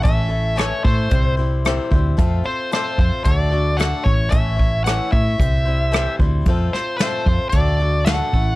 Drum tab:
HH |x-x-x-x-|x-x-x-x-|x-x-x-x-|x-x-x-x-|
SD |--r---r-|--r---r-|--r---r-|-oo---o-|
BD |o--oo--o|o--oo--o|oo-oo--o|o--oo--o|